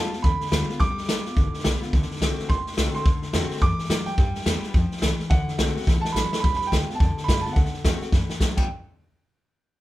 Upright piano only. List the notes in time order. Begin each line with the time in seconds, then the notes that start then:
Already playing: A5
0.22 B5
0.80 D6
2.49 C6
2.94 C6
3.62 D6
4.06 G5
5.30 F#5
6.01 A5
6.12 B5
6.40 B5
6.56 B5
6.67 G5
6.95 A5
7.24 B5
7.41 A5
7.53 F#5
8.57 G5